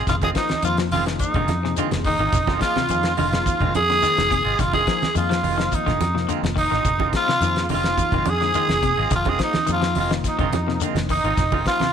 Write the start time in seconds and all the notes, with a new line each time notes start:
Already playing: G#3 C4 F4
0.07 F1 D#3 F4, kick, snare, closed hi-hat, low conga, shekere
0.22 D#3 G#3 C4 F4 G#4, kick, closed hi-hat, high conga
0.35 F3 A#3 D#4 A#4, kick, snare, closed hi-hat, shekere
0.49 muted clean electric guitar stroke, snare, closed hi-hat, high conga
0.62 F2 D#3 F3 A#3 D#4 F4, closed hi-hat, shekere
0.77 F3, muted clean electric guitar stroke, snare, closed hi-hat
0.91 F1 D#3 G#3 C4 F4, open hi-hat, high conga, shekere
1.06 D#3 F3 A#3 D#4 G#4, muted clean electric guitar stroke, snare, closed hi-hat
1.19 D#4, muted clean electric guitar stroke, kick, closed hi-hat, shekere
1.34 F1 D3 D#3 G#3 C4 F4, kick, closed hi-hat, low conga
1.48 F2, snare, closed hi-hat, high conga, shekere
1.63 C3 F3 A#3 D#4 G#4, snare
1.77 D3 D#3 G#3 C4 F4, closed hi-hat, shekere
1.91 F1, snare, closed hi-hat, high conga
2.05 D#3 D#4, muted clean electric guitar stroke, kick, open hi-hat, shekere
2.19 G#1 D#3 G#3 C4 F4, closed hi-hat
2.32 F1, kick, snare, closed hi-hat, low conga, shekere
2.47 D#3 G#3 C4 F4, kick, snare, high conga
2.60 F3 A#3 D#4 F4 G#4, muted clean electric guitar stroke, kick, snare, closed hi-hat, shekere
2.76 C3, muted clean electric guitar stroke, snare, closed hi-hat, high conga
2.89 F2 D#3 F3 A#3 D#4 G#4, closed hi-hat, shekere
3.03 snare, closed hi-hat
3.17 F1 D3 D#3 G#3 F4, muted clean electric guitar stroke, open hi-hat, high conga, shekere
3.32 F3 A#3 D#4 G#4, muted clean electric guitar stroke, snare, closed hi-hat, low conga
3.46 muted clean electric guitar stroke, kick, closed hi-hat, high conga, shekere
3.60 F1 D#3 G#3 C4 F4, kick, closed hi-hat, low conga
3.74 F2 G#4, muted clean electric guitar stroke, closed hi-hat, high conga, shekere
3.89 D3 F3 A#3 D#4 G#4, snare, closed hi-hat
4.02 D#3 G#3 C4 F4, snare, closed hi-hat, shekere
4.17 F1, muted clean electric guitar stroke, snare, closed hi-hat, high conga
4.30 C3, muted clean electric guitar stroke, kick, closed hi-hat, shekere
4.45 G#1 G#3 C4 F4
4.59 F1 D#3 F4, kick, snare, closed hi-hat, low conga, shekere
4.73 D#3 G#3 C4 F4 G#4, kick, closed hi-hat, high conga
4.87 F3 A#3 D#4 A#4, muted clean electric guitar stroke, kick, snare, closed hi-hat, shekere
5.02 muted clean electric guitar stroke, snare, closed hi-hat, high conga
5.15 F2 D#3 F3 A#3 D#4 F4 G#4, closed hi-hat, shekere
5.29 F3, muted clean electric guitar stroke, snare, closed hi-hat
5.43 F1 D#3 G#3 F4, muted clean electric guitar stroke, open hi-hat, high conga, shekere
5.58 D#3 F3 A#3 D#4 F4, muted clean electric guitar stroke, snare, closed hi-hat
5.72 D#4, muted clean electric guitar stroke, kick, closed hi-hat, high conga, shekere
5.86 F1 D3 D#3 G#3 F4, kick, snare, closed hi-hat, low conga
6.01 F2, muted clean electric guitar stroke, snare, closed hi-hat, high conga, shekere
6.14 C3 F3 A#3 D#4 A#4, snare
6.29 D3 D#3 G#3 C4 F4, closed hi-hat, shekere
6.43 F1, muted clean electric guitar stroke, snare, closed hi-hat, high conga
6.56 D#3 D#4, muted clean electric guitar stroke, kick, open hi-hat, shekere
6.71 G#1 D#3 G#3 C4 F4, snare, closed hi-hat
6.84 F1, kick, closed hi-hat, low conga, shekere
6.99 D#3 G#3 C4 F4, kick, high conga
7.13 F3 A#3 D#4 F4 G#4, muted clean electric guitar stroke, kick, snare, closed hi-hat, shekere
7.28 C3, muted clean electric guitar stroke, snare, closed hi-hat
7.41 F2 D#3 F3 A#3 D#4 G#4, snare, closed hi-hat, shekere
7.56 muted clean electric guitar stroke, snare, closed hi-hat
7.69 F1 D3 D#3 G#3 C4 F4, open hi-hat, high conga, shekere
7.73 F4
7.83 F3 A#3 D#4 G#4, muted clean electric guitar stroke, snare, closed hi-hat
7.97 muted clean electric guitar stroke, kick, closed hi-hat, high conga, shekere
8.12 F1 D#3 G#3 C4 F4, kick, closed hi-hat, low conga
8.26 F2 G#4, muted clean electric guitar stroke, closed hi-hat, high conga, shekere
8.31 G#4
8.41 D3 F3 A#3 D#4 G#4, snare, closed hi-hat
8.54 D#3 G#3 C4 F4, closed hi-hat, shekere
8.69 F1, muted clean electric guitar stroke, snare, closed hi-hat, high conga
8.83 C3, muted clean electric guitar stroke, kick, closed hi-hat, shekere
8.97 G#1 G#3 C4 F4
9.11 F1 D#3 F4, kick, snare, closed hi-hat, low conga, shekere
9.15 F4
9.25 D#3 G#3 C4 F4 G#4, kick, closed hi-hat, high conga
9.29 G#4
9.39 F3 A#3 D#4 G#4, muted clean electric guitar stroke, kick, snare, closed hi-hat, shekere
9.44 D#4
9.53 muted clean electric guitar stroke, snare, closed hi-hat, high conga
9.67 F2 D#3 F3 A#3 D#4 G#4, closed hi-hat, shekere
9.71 F4
9.81 F3, muted clean electric guitar stroke, snare, closed hi-hat
9.95 F1 D#3 G#3 C4 F4, muted clean electric guitar stroke, open hi-hat, high conga, shekere
10.00 F4
10.10 D#3 F3 A#3 D#4 F4, muted clean electric guitar stroke, snare, closed hi-hat
10.24 D#4, muted clean electric guitar stroke, kick, snare, closed hi-hat, shekere
10.39 F1 D3 D#3 G#3 C4 F4, kick, closed hi-hat, low conga
10.52 F2, snare, closed hi-hat, high conga, shekere
10.67 C3 F3 A#3 D#4 A#4, snare
10.80 D3 D#3 G#3 C4 F4, closed hi-hat, shekere
10.95 F1, muted clean electric guitar stroke, snare, closed hi-hat, high conga
11.09 D#3 D#4, muted clean electric guitar stroke, kick, open hi-hat, shekere
11.24 G#1 D#3 G#3 C4 F4, closed hi-hat
11.37 F1, kick, snare, closed hi-hat, low conga, shekere
11.52 D#3 G#3 C4 F4, kick, high conga
11.66 F3 A#3 D#4 F4 G#4, muted clean electric guitar stroke, kick, snare, closed hi-hat, shekere
11.80 C3, muted clean electric guitar stroke, snare, closed hi-hat, high conga